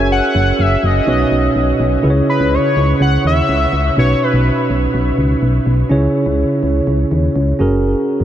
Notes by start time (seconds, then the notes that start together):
Already playing: F#1 C#4 F#4 G#4 A#4 C#5
0.12 F#5
0.35 F#1
0.59 F#1 E5
0.83 F#1 D#5
1.06 B1 B2 C#4 D#4 F#4 B4 C#5
1.31 B1
1.56 B1
1.80 B1
2.02 C#2 C#3 C#4 E4 G#4 B4
2.10 C#5
2.30 B4
2.40 C#2
2.54 C#5
2.76 C#2
3.00 C#2 F#5
3.24 D#2 E5
3.49 C#2
3.73 C#2
3.96 B1 B2 C#4 D#4 F#4 B4 C#5
4.23 B4
4.33 B1
4.70 B1
4.94 B1
5.18 C#2
5.42 B1
5.66 B1
5.89 C#2 C#3 C#4 E4 G#4 C#5
6.26 C#2
6.63 C#2
6.87 C#2
7.11 D#2
7.36 C#2
7.59 F#1 C#4 F#4 G#4 A#4
8.20 F#1